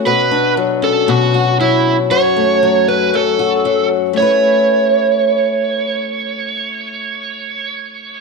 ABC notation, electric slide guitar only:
X:1
M:4/4
L:1/16
Q:1/4=117
K:A
V:1 name="Electric slide guitar"
B4 z2 A2 F4 E3 z | c6 B2 A6 z2 | c16- | c16 |]